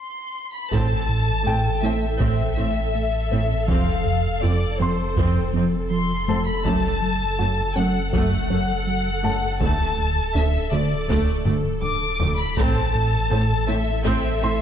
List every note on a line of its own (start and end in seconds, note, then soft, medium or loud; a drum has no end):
0.00 0.50 C6 medium
0.54 0.73 B5 medium
0.71 3.71 A1 medium
0.71 0.94 A2 medium
0.71 0.81 A2 medium
0.71 0.94 A3 medium
0.71 1.06 C4 soft
0.71 6.61 A4 soft
0.71 1.84 A5 medium
0.71 taiko medium
1.09 1.31 A2 medium
1.46 1.54 A2 soft
1.46 1.69 A2 medium
1.46 1.55 C4 soft
1.46 1.69 A4 medium
1.46 3.65 G5 soft
1.83 1.91 A2 soft
1.83 2.05 A3 medium
1.83 1.91 C4 soft
1.83 2.06 E4 medium
1.83 2.20 E5 medium
2.20 2.42 A2 medium
2.20 2.28 A2 medium
2.20 2.43 A3 medium
2.20 2.55 C4 medium
2.20 3.66 E5 medium
2.20 taiko medium
2.57 2.65 A2 soft
2.57 2.80 A3 medium
2.57 2.65 C4 soft
2.57 2.80 E4 soft
2.95 3.17 A3 medium
3.31 3.39 A2 soft
3.31 3.54 A2 medium
3.31 3.54 C4 medium
3.31 3.40 C4 soft
3.68 6.66 F1 medium
3.68 3.91 F2 medium
3.68 3.77 F2 medium
3.68 3.90 F3 medium
3.68 4.03 C4 soft
3.68 4.42 F5 medium
3.68 taiko medium
4.06 4.28 F2 soft
4.43 4.65 F2 medium
4.43 4.51 F2 soft
4.43 4.51 C4 soft
4.43 4.65 F4 medium
4.43 4.80 D5 medium
4.80 4.88 F2 soft
4.80 5.02 F3 soft
4.80 4.88 C4 soft
4.80 5.03 C4 medium
4.80 5.54 C5 medium
4.80 6.99 C6 soft
5.16 5.39 F2 medium
5.16 5.26 F2 medium
5.16 5.40 F3 medium
5.16 5.52 C4 medium
5.16 taiko medium
5.53 5.63 F2 soft
5.53 5.75 F3 medium
5.53 5.76 C4 soft
5.53 5.63 C4 soft
5.91 6.13 F3 medium
5.91 6.43 C6 medium
6.27 6.50 F2 medium
6.27 6.37 F2 soft
6.27 6.50 A3 medium
6.27 6.37 C4 soft
6.27 8.46 A4 soft
6.27 8.47 A5 soft
6.47 6.65 B5 medium
6.64 9.63 F#1 medium
6.64 6.87 F#2 medium
6.64 6.74 F#2 medium
6.64 6.87 F#3 medium
6.64 6.99 A3 medium
6.64 12.53 A4 soft
6.64 7.76 A5 medium
6.64 taiko medium
7.02 7.24 F#2 medium
7.39 7.61 F#2 medium
7.39 7.48 F#2 soft
7.39 7.48 A3 soft
7.39 7.61 F#4 medium
7.76 7.85 F#2 soft
7.76 7.99 F#3 medium
7.76 7.86 A3 soft
7.76 7.98 C#4 medium
7.76 8.11 F#5 medium
8.13 8.35 F#2 medium
8.13 8.22 F#2 medium
8.13 8.35 F#3 medium
8.13 8.48 A3 medium
8.13 9.58 F#5 medium
8.13 taiko medium
8.50 8.59 F#2 soft
8.50 8.72 F#3 medium
8.50 8.59 A3 soft
8.50 8.72 C#4 medium
8.87 9.09 F#3 medium
9.24 9.46 F#2 medium
9.24 9.32 F#2 soft
9.24 9.46 A3 medium
9.24 9.33 A3 soft
9.24 11.43 A5 medium
9.60 12.59 D1 medium
9.60 9.69 D2 medium
9.60 9.84 D2 medium
9.60 9.83 D3 medium
9.60 9.97 A3 medium
9.60 10.34 A5 medium
9.60 taiko medium
9.98 10.20 D2 medium
10.35 10.57 D2 medium
10.35 10.44 D2 soft
10.35 10.45 A3 soft
10.35 10.57 D4 medium
10.35 10.73 E5 medium
10.72 10.81 D2 medium
10.72 10.94 D3 medium
10.72 10.94 A3 medium
10.72 10.81 A3 soft
10.72 11.47 D5 medium
11.09 11.32 D2 medium
11.09 11.18 D2 medium
11.09 11.32 D3 medium
11.09 11.44 A3 medium
11.09 taiko medium
11.45 11.54 D2 soft
11.45 11.69 D3 medium
11.45 11.54 A3 medium
11.45 11.69 A3 medium
11.45 taiko low-mid medium
11.82 12.06 D3 medium
11.82 12.35 D6 medium
11.82 taiko low-mid medium
12.20 12.43 D2 medium
12.20 12.29 D2 soft
12.20 12.43 F3 medium
12.20 12.29 A3 medium
12.20 taiko low medium
12.40 12.58 B5 medium
12.57 14.62 A1 medium
12.57 12.66 A2 medium
12.57 12.80 A2 medium
12.57 12.80 A3 medium
12.57 12.92 C4 medium
12.57 14.62 A4 medium
12.57 13.69 A5 medium
12.57 taiko medium
12.95 13.17 A2 medium
13.30 13.54 A2 medium
13.30 13.40 A2 soft
13.30 13.38 C4 medium
13.30 13.54 A4 medium
13.67 13.76 A2 soft
13.67 13.91 A3 soft
13.67 13.75 C4 soft
13.67 13.91 E4 medium
13.67 14.04 E5 medium
14.04 14.13 A2 medium
14.04 14.28 A2 medium
14.04 14.27 A3 medium
14.04 14.39 C4 medium
14.04 14.62 E5 medium
14.04 taiko medium
14.41 14.52 A2 soft
14.41 14.62 A3 medium
14.41 14.49 C4 soft
14.41 14.62 E4 medium
14.41 14.62 C6 soft